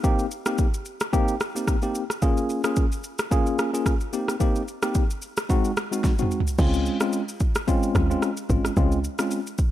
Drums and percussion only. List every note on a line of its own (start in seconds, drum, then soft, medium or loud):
0.04 kick loud
0.04 shaker medium
0.19 shaker soft
0.31 shaker medium
0.46 cross-stick loud
0.46 shaker medium
0.58 kick medium
0.58 shaker medium
0.74 shaker medium
0.85 shaker medium
1.00 cross-stick loud
1.00 shaker medium
1.13 kick loud
1.13 shaker medium
1.28 shaker medium
1.40 cross-stick loud
1.40 shaker medium
1.56 shaker medium
1.68 kick medium
1.68 cross-stick medium
1.68 shaker medium
1.82 shaker medium
1.95 shaker medium
2.10 cross-stick medium
2.10 shaker medium
2.22 kick loud
2.22 shaker medium
2.37 shaker soft
2.50 shaker medium
2.64 cross-stick loud
2.64 shaker medium
2.76 kick loud
2.76 shaker medium
2.92 shaker medium
3.04 shaker medium
3.19 cross-stick loud
3.19 shaker medium
3.31 kick loud
3.31 shaker medium
3.46 shaker medium
3.59 cross-stick loud
3.59 shaker medium
3.75 shaker medium
3.86 kick medium
3.86 cross-stick medium
3.86 shaker medium
4.01 shaker soft
4.13 shaker medium
4.28 cross-stick medium
4.28 shaker medium
4.41 kick loud
4.41 shaker medium
4.56 shaker soft
4.68 shaker medium
4.82 cross-stick loud
4.82 shaker medium
4.95 kick medium
4.95 shaker medium
5.10 shaker medium
5.22 shaker medium
5.37 cross-stick loud
5.37 shaker medium
5.50 kick loud
5.50 shaker medium
5.65 shaker soft
5.77 cross-stick loud
5.77 shaker medium
5.93 shaker medium
6.04 kick medium
6.04 snare soft
6.04 shaker medium
6.19 mid tom medium
6.19 shaker medium
6.31 shaker medium
6.40 floor tom loud
6.47 shaker medium
6.59 kick loud
6.59 crash medium
6.59 shaker medium
6.74 shaker medium
6.86 shaker medium
7.01 cross-stick loud
7.01 shaker medium
7.13 shaker medium
7.29 shaker medium
7.40 kick medium
7.40 shaker medium
7.55 cross-stick loud
7.55 shaker medium
7.68 kick medium
7.68 shaker medium
7.83 shaker medium
7.95 kick loud
7.95 cross-stick loud
7.95 shaker medium
8.11 shaker medium
8.22 cross-stick medium
8.22 shaker medium
8.37 shaker medium
8.50 kick medium
8.50 shaker medium
8.65 cross-stick medium
8.65 shaker medium
8.77 kick loud
8.77 shaker medium
8.92 shaker soft
9.04 shaker medium
9.19 cross-stick loud
9.19 shaker medium
9.31 shaker medium
9.47 shaker medium
9.58 kick medium
9.58 shaker medium